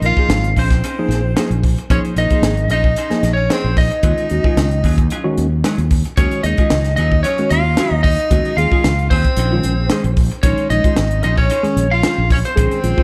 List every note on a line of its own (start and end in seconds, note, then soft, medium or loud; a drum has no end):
0.01 0.15 A#1 medium
0.01 0.15 F3 medium
0.01 0.15 A#3 medium
0.01 0.15 D#4 medium
0.01 0.54 F4 medium
0.01 0.15 A#4 medium
0.01 muted clean electric guitar stroke soft
0.01 closed hi-hat medium
0.06 0.60 F5 medium
0.17 0.39 F3 medium
0.17 0.39 A#3 medium
0.17 0.30 D#4 soft
0.17 0.40 D#4 medium
0.17 0.30 G#4 soft
0.17 0.39 G#4 medium
0.17 0.30 C5 soft
0.17 muted fretless electric bass stroke soft
0.17 kick medium
0.28 0.53 G#1 medium
0.28 muted clean electric guitar stroke soft
0.28 snare loud
0.28 closed hi-hat medium
0.44 0.51 D#4 soft
0.44 0.51 G#4 soft
0.44 closed hi-hat soft
0.56 0.81 A#1 medium
0.56 1.61 C4 medium
0.56 0.71 C#4 medium
0.56 0.71 D#4 medium
0.56 0.71 G#4 medium
0.56 0.70 C5 medium
0.56 1.61 C5 medium
0.56 kick medium
0.56 open hi-hat medium
0.71 muted clean electric guitar stroke soft
0.71 kick medium
0.71 snare soft
0.71 closed hi-hat soft
0.84 0.98 C#4 medium
0.84 0.97 D#4 medium
0.84 0.96 G#4 medium
0.84 0.96 C5 medium
0.84 closed hi-hat medium
0.97 1.20 F3 medium
0.97 1.19 A#3 medium
0.97 1.20 D#4 medium
0.97 1.20 G#4 loud
0.97 muted clean electric guitar stroke soft
1.08 1.33 A#1 medium
1.08 muted clean electric guitar stroke soft
1.08 snare soft
1.08 closed hi-hat medium
1.26 1.31 D#4 soft
1.26 1.31 F4 soft
1.36 1.49 F3 medium
1.36 1.49 A#3 medium
1.36 1.51 C#4 medium
1.36 1.50 D#4 medium
1.36 1.49 D#4 medium
1.36 1.50 G#4 medium
1.36 1.49 G#4 medium
1.36 1.50 C5 medium
1.36 1.87 G#5 medium
1.36 snare loud
1.36 closed hi-hat medium
1.50 1.75 A#1 medium
1.50 1.58 D#4 soft
1.50 1.58 A#4 soft
1.50 muted clean electric guitar stroke soft
1.50 closed hi-hat soft
1.64 muted clean electric guitar stroke soft
1.64 kick medium
1.64 open hi-hat medium
1.78 muted clean electric guitar stroke soft
1.78 closed hi-hat soft
1.90 2.02 A#1 medium
1.90 2.12 F3 medium
1.90 2.12 A#3 medium
1.90 2.04 C#4 medium
1.90 2.03 C#4 medium
1.90 2.04 D#4 medium
1.90 2.12 D#4 medium
1.90 2.04 G#4 medium
1.90 2.13 G#4 medium
1.90 2.03 C5 medium
1.90 1.99 C#5 medium
1.90 kick medium
1.90 closed hi-hat medium
2.03 2.17 D#4 soft
2.03 2.17 G#4 soft
2.03 2.17 C5 medium
2.03 muted fretless electric bass stroke soft
2.03 closed hi-hat soft
2.16 2.29 A#1 medium
2.16 2.28 F3 medium
2.16 2.29 A#3 medium
2.16 2.29 D#4 medium
2.16 2.67 D#4 medium
2.16 2.29 A#4 medium
2.16 2.70 D#5 medium
2.16 muted clean electric guitar stroke soft
2.16 closed hi-hat medium
2.30 2.52 F3 medium
2.30 2.53 A#3 medium
2.30 2.52 D#4 medium
2.30 2.44 D#4 soft
2.30 2.52 G#4 medium
2.30 2.44 G#4 soft
2.30 2.44 C5 soft
2.30 muted fretless electric bass stroke soft
2.30 kick medium
2.30 closed hi-hat soft
2.42 2.67 G#1 medium
2.42 muted clean electric guitar stroke soft
2.42 snare loud
2.42 closed hi-hat medium
2.57 2.64 A#4 soft
2.57 closed hi-hat soft
2.68 2.93 A#1 medium
2.68 2.85 C#4 medium
2.68 2.85 D#4 medium
2.68 2.84 G#4 medium
2.68 3.33 D#5 medium
2.68 closed hi-hat medium
2.73 3.30 D#4 medium
2.73 2.84 C5 medium
2.84 muted clean electric guitar stroke soft
2.84 kick medium
2.96 3.11 C#4 medium
2.96 3.11 D#4 medium
2.96 3.11 G#4 medium
2.96 3.10 C5 medium
2.96 closed hi-hat medium
3.10 3.32 F3 medium
3.10 3.32 A#3 medium
3.10 3.32 D#4 medium
3.10 3.32 G#4 loud
3.10 muted clean electric guitar stroke soft
3.10 snare soft
3.10 closed hi-hat soft
3.23 3.47 A#1 medium
3.23 muted clean electric guitar stroke soft
3.23 snare soft
3.23 closed hi-hat medium
3.33 3.54 C#4 medium
3.33 3.52 C#5 medium
3.38 3.44 D#4 soft
3.38 3.44 F4 soft
3.49 3.62 F3 medium
3.49 3.62 A#3 medium
3.49 3.78 C4 medium
3.49 3.64 C#4 medium
3.49 3.64 D#4 soft
3.49 3.62 D#4 medium
3.49 3.63 G#4 medium
3.49 3.62 G#4 medium
3.49 3.63 C5 medium
3.49 3.77 C5 medium
3.49 snare loud
3.49 closed hi-hat medium
3.64 3.89 A#1 medium
3.64 3.71 D#4 soft
3.64 3.71 G#4 soft
3.64 muted clean electric guitar stroke soft
3.77 5.35 D#4 medium
3.77 5.34 D#5 medium
3.77 muted clean electric guitar stroke soft
3.77 kick medium
3.77 open hi-hat medium
3.91 muted clean electric guitar stroke soft
3.91 closed hi-hat soft
4.03 4.16 D#2 medium
4.03 4.26 D#3 medium
4.03 4.18 F#3 medium
4.03 4.26 G#3 medium
4.03 4.18 C#4 medium
4.03 4.26 C#4 medium
4.03 4.26 F4 medium
4.03 4.18 F4 medium
4.03 4.17 G#4 medium
4.03 kick medium
4.03 closed hi-hat medium
4.18 4.29 C#4 soft
4.18 4.30 F4 soft
4.18 4.30 G#4 soft
4.18 closed hi-hat soft
4.30 4.43 D#2 medium
4.30 4.42 D#3 medium
4.30 4.42 G#3 medium
4.30 4.42 C#4 medium
4.30 4.42 F#4 medium
4.30 muted clean electric guitar stroke soft
4.30 closed hi-hat medium
4.44 4.66 D#3 medium
4.44 4.66 G#3 medium
4.44 4.66 C#4 medium
4.44 4.57 C#4 soft
4.44 4.66 F4 medium
4.44 4.57 F4 medium
4.44 4.57 G#4 medium
4.44 muted fretless electric bass stroke soft
4.44 kick medium
4.57 4.81 C#2 medium
4.57 muted clean electric guitar stroke soft
4.57 snare medium
4.57 closed hi-hat medium
4.71 4.77 C#4 soft
4.71 4.77 G#4 soft
4.71 closed hi-hat soft
4.84 5.08 D#2 medium
4.84 4.98 F#3 medium
4.84 4.99 C#4 medium
4.84 4.98 F4 medium
4.84 4.98 G#4 medium
4.84 kick medium
4.84 open hi-hat medium
4.98 muted clean electric guitar stroke soft
4.98 kick medium
4.98 closed hi-hat soft
5.10 5.25 F#3 medium
5.10 5.25 C#4 medium
5.10 5.25 F4 medium
5.10 5.24 G#4 medium
5.10 closed hi-hat medium
5.24 5.45 D#3 loud
5.24 5.46 G#3 medium
5.24 5.46 C#4 medium
5.24 5.46 F#4 loud
5.24 muted clean electric guitar stroke soft
5.38 5.62 D#2 medium
5.38 muted clean electric guitar stroke soft
5.38 closed hi-hat medium
5.51 5.57 C#4 soft
5.51 5.58 F#4 soft
5.64 5.75 D#3 medium
5.64 5.79 F#3 medium
5.64 5.75 G#3 medium
5.64 5.75 C#4 medium
5.64 5.79 C#4 medium
5.64 5.76 D#4 medium
5.64 5.79 F4 medium
5.64 5.78 G#4 medium
5.64 snare medium
5.64 closed hi-hat medium
5.78 6.02 D#2 medium
5.78 5.84 C#4 soft
5.78 muted clean electric guitar stroke soft
5.78 closed hi-hat soft
5.91 muted clean electric guitar stroke soft
5.91 kick medium
5.91 open hi-hat medium
6.04 muted clean electric guitar stroke soft
6.04 closed hi-hat soft
6.17 6.30 D#2 medium
6.17 6.39 D#3 medium
6.17 6.32 F#3 medium
6.17 6.39 G#3 medium
6.17 6.39 C#4 medium
6.17 6.32 C#4 medium
6.17 6.43 C#4 medium
6.17 6.31 F4 medium
6.17 6.39 F#4 medium
6.17 6.31 G#4 medium
6.17 6.43 C#5 medium
6.17 kick medium
6.17 closed hi-hat medium
6.31 6.44 C#4 soft
6.31 6.44 F4 soft
6.31 6.44 G#4 soft
6.31 muted fretless electric bass stroke soft
6.31 closed hi-hat soft
6.43 6.57 D#2 medium
6.43 6.55 D#3 medium
6.43 6.55 G#3 medium
6.43 6.55 C#4 medium
6.43 6.95 D#4 medium
6.43 6.55 G#4 medium
6.43 6.95 D#5 medium
6.43 muted clean electric guitar stroke soft
6.43 closed hi-hat medium
6.58 6.80 D#3 medium
6.58 6.80 G#3 medium
6.58 6.80 C#4 medium
6.58 6.71 C#4 soft
6.58 6.71 F4 soft
6.58 6.80 F4 medium
6.58 6.71 G#4 medium
6.58 kick medium
6.58 closed hi-hat soft
6.70 6.95 C#2 medium
6.70 muted clean electric guitar stroke soft
6.70 snare loud
6.70 closed hi-hat medium
6.84 snare soft
6.84 closed hi-hat soft
6.96 7.22 D#2 medium
6.96 7.12 F#3 medium
6.96 7.11 C#4 medium
6.96 7.24 D#4 medium
6.96 7.10 F4 medium
6.96 7.10 G#4 medium
6.96 7.22 D#5 medium
6.96 closed hi-hat medium
7.11 muted clean electric guitar stroke soft
7.11 kick medium
7.23 7.38 F#3 medium
7.23 7.37 C#4 medium
7.23 7.50 C#4 medium
7.23 7.37 F4 medium
7.23 7.37 G#4 medium
7.23 7.51 C#5 medium
7.23 closed hi-hat medium
7.38 7.60 D#3 medium
7.38 7.60 G#3 medium
7.38 7.60 C#4 medium
7.38 7.60 F#4 loud
7.38 muted clean electric guitar stroke soft
7.38 closed hi-hat soft
7.50 7.75 D#2 medium
7.50 8.01 F4 medium
7.50 7.94 F5 medium
7.50 muted clean electric guitar stroke soft
7.50 closed hi-hat medium
7.77 7.89 D#3 medium
7.77 7.92 F#3 soft
7.77 7.89 G#3 medium
7.77 7.89 C#4 medium
7.77 7.92 C#4 medium
7.77 7.91 F4 medium
7.77 7.89 F#4 medium
7.77 7.91 G#4 medium
7.77 snare loud
7.77 closed hi-hat medium
7.91 8.15 D#2 medium
7.91 8.03 D#5 medium
7.91 muted clean electric guitar stroke soft
8.03 8.53 D#4 medium
8.03 8.58 D#5 medium
8.03 muted clean electric guitar stroke soft
8.03 kick medium
8.03 open hi-hat medium
8.19 muted clean electric guitar stroke soft
8.19 closed hi-hat soft
8.30 8.44 D#2 medium
8.30 8.52 D#3 medium
8.30 8.45 F#3 medium
8.30 8.52 G#3 medium
8.30 8.52 C#4 medium
8.30 8.45 C#4 medium
8.30 8.45 F4 medium
8.30 8.53 F#4 medium
8.30 8.44 G#4 medium
8.30 kick loud
8.30 closed hi-hat medium
8.45 8.57 C#4 soft
8.45 8.57 F4 soft
8.45 8.57 G#4 medium
8.45 muted fretless electric bass stroke soft
8.45 closed hi-hat soft
8.57 8.70 D#2 medium
8.57 8.69 D#3 medium
8.57 8.69 G#3 medium
8.57 8.69 C#4 medium
8.57 9.07 F4 medium
8.57 8.69 G#4 medium
8.57 9.07 F5 medium
8.57 muted clean electric guitar stroke soft
8.57 closed hi-hat medium
8.72 8.93 D#3 medium
8.72 8.93 G#3 medium
8.72 8.93 C#4 medium
8.72 8.84 C#4 soft
8.72 8.93 F4 medium
8.72 8.84 F4 soft
8.72 8.85 G#4 medium
8.72 kick medium
8.84 9.08 C#2 medium
8.84 muted clean electric guitar stroke soft
8.84 snare loud
8.84 closed hi-hat medium
8.99 9.05 C#4 soft
8.99 9.05 F4 soft
8.99 closed hi-hat soft
9.10 9.23 D#2 medium
9.10 9.25 F#3 medium
9.10 10.13 C4 medium
9.10 9.25 C#4 medium
9.10 9.24 F4 medium
9.10 9.24 G#4 medium
9.10 10.13 C5 medium
9.10 kick medium
9.10 open hi-hat medium
9.24 muted clean electric guitar stroke soft
9.24 kick medium
9.24 closed hi-hat soft
9.37 9.61 A#1 loud
9.37 9.52 C#4 medium
9.37 9.52 D#4 medium
9.37 9.52 G#4 medium
9.37 9.51 C5 medium
9.37 closed hi-hat medium
9.52 9.73 D#3 medium
9.52 9.73 G#3 medium
9.52 9.73 C#4 medium
9.52 9.73 F4 loud
9.52 muted clean electric guitar stroke soft
9.63 9.88 A#1 medium
9.63 muted clean electric guitar stroke soft
9.63 closed hi-hat medium
9.80 9.85 C#4 soft
9.80 9.85 G#4 soft
9.90 10.03 D#3 medium
9.90 10.03 G#3 medium
9.90 10.05 C#4 medium
9.90 10.03 C#4 medium
9.90 10.04 D#4 medium
9.90 10.04 G#4 medium
9.90 10.03 G#4 medium
9.90 10.04 C5 medium
9.90 snare loud
9.90 closed hi-hat medium
10.04 10.29 A#1 medium
10.04 10.12 C#4 soft
10.04 10.12 F4 soft
10.04 muted clean electric guitar stroke soft
10.04 closed hi-hat soft
10.17 muted clean electric guitar stroke soft
10.17 kick medium
10.17 open hi-hat medium
10.31 muted clean electric guitar stroke soft
10.31 closed hi-hat soft
10.43 10.56 A#1 medium
10.43 10.66 D#3 medium
10.43 10.67 G#3 medium
10.43 10.59 C#4 medium
10.43 10.69 C#4 medium
10.43 10.66 C#4 medium
10.43 10.67 D#4 loud
10.43 10.58 D#4 medium
10.43 10.57 G#4 medium
10.43 10.57 C5 medium
10.43 10.70 C#5 medium
10.43 kick medium
10.43 closed hi-hat medium
10.58 10.70 D#4 soft
10.58 10.70 G#4 medium
10.58 10.70 C5 medium
10.58 muted fretless electric bass stroke soft
10.58 closed hi-hat soft
10.70 10.83 A#1 medium
10.70 10.82 D#3 medium
10.70 10.82 G#3 medium
10.70 10.83 C#4 medium
10.70 11.20 D#4 medium
10.70 10.83 D#4 medium
10.70 11.23 D#5 medium
10.70 muted clean electric guitar stroke soft
10.70 closed hi-hat medium
10.84 11.06 D#3 medium
10.84 11.06 G#3 medium
10.84 11.06 C#4 medium
10.84 10.96 D#4 soft
10.84 11.06 F4 medium
10.84 10.97 G#4 medium
10.84 10.97 C5 medium
10.84 kick medium
10.84 closed hi-hat soft
10.96 11.22 G#1 medium
10.96 muted clean electric guitar stroke soft
10.96 snare loud
10.96 closed hi-hat medium
11.11 11.18 F4 soft
11.11 closed hi-hat soft
11.23 11.48 A#1 medium
11.23 11.38 C#4 medium
11.23 11.38 D#4 medium
11.23 11.37 D#4 medium
11.23 11.37 G#4 medium
11.23 11.37 C5 medium
11.23 11.37 D#5 medium
11.23 closed hi-hat medium
11.38 11.88 C#4 medium
11.38 11.93 C#5 medium
11.38 muted clean electric guitar stroke soft
11.38 kick medium
11.50 11.65 C#4 medium
11.50 11.64 D#4 medium
11.50 11.64 G#4 medium
11.50 11.64 C5 medium
11.50 closed hi-hat medium
11.63 11.85 D#3 medium
11.63 11.85 G#3 medium
11.63 11.85 C#4 medium
11.63 11.85 G#4 loud
11.63 muted clean electric guitar stroke soft
11.63 closed hi-hat soft
11.76 12.01 A#1 medium
11.76 muted clean electric guitar stroke soft
11.76 closed hi-hat medium
11.91 11.97 F4 soft
11.91 12.29 F4 medium
11.91 12.28 F5 medium
12.02 12.15 D#3 medium
12.02 12.15 G#3 medium
12.02 12.15 C#4 medium
12.02 12.18 C#4 medium
12.02 12.17 D#4 medium
12.02 12.15 F4 medium
12.02 12.17 G#4 medium
12.02 12.17 C5 medium
12.02 snare loud
12.02 closed hi-hat medium
12.17 12.42 A#1 medium
12.17 12.24 C#4 soft
12.17 12.24 G#4 soft
12.17 muted clean electric guitar stroke soft
12.30 12.39 C#4 medium
12.30 12.37 C#5 medium
12.30 muted clean electric guitar stroke soft
12.30 kick medium
12.30 open hi-hat medium
12.45 13.03 C4 medium
12.45 13.03 C5 medium
12.45 muted clean electric guitar stroke soft
12.45 closed hi-hat soft
12.55 12.70 A#1 medium
12.55 12.78 D#3 medium
12.55 12.78 G#3 medium
12.55 12.78 C#4 medium
12.55 12.71 C#4 medium
12.55 12.72 D#4 medium
12.55 12.78 G#4 medium
12.55 12.71 G#4 medium
12.55 12.70 C5 medium
12.55 kick medium
12.55 closed hi-hat medium
12.71 12.83 D#4 soft
12.71 12.83 G#4 soft
12.71 12.83 C5 medium
12.71 closed hi-hat soft
12.82 12.97 A#1 medium
12.82 12.95 D#3 medium
12.82 12.95 G#3 medium
12.82 12.95 C#4 medium
12.82 12.95 F4 medium
12.82 muted clean electric guitar stroke soft
12.82 closed hi-hat medium
12.97 13.03 D#3 medium
12.97 13.03 G#3 medium
12.97 13.03 C#4 medium
12.97 13.03 D#4 soft
12.97 13.03 F4 medium
12.97 13.03 G#4 soft
12.97 13.03 C5 soft
12.97 kick medium